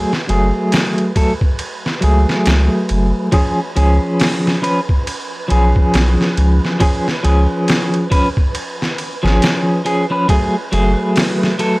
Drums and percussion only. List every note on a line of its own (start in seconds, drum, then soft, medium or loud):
0.13 snare soft
0.29 ride medium
0.72 snare loud
0.72 ride medium
0.98 ride soft
1.16 kick medium
1.16 ride medium
1.41 kick medium
1.59 ride medium
1.86 snare soft
2.02 ride medium
2.29 snare soft
2.46 snare loud
2.46 ride medium
2.89 ride medium
3.32 kick loud
3.32 ride medium
3.76 ride medium
4.20 snare loud
4.20 open hi-hat medium
4.47 snare soft
4.64 ride medium
4.89 kick medium
5.07 ride medium
5.50 ride medium
5.76 kick medium
5.94 snare loud
5.94 ride medium
6.21 snare soft
6.37 ride medium
6.65 snare soft
6.80 kick loud
6.80 ride medium
7.08 snare soft
7.25 ride medium
7.68 snare loud
7.68 ride medium
7.94 ride soft
8.12 kick medium
8.12 ride medium
8.37 kick medium
8.55 ride medium
8.82 snare soft
8.98 ride medium
9.26 snare soft
9.42 snare loud
9.42 ride medium
9.86 ride medium
10.29 kick loud
10.29 ride medium
10.73 ride medium
11.16 snare loud
11.16 open hi-hat medium
11.43 snare soft
11.59 ride medium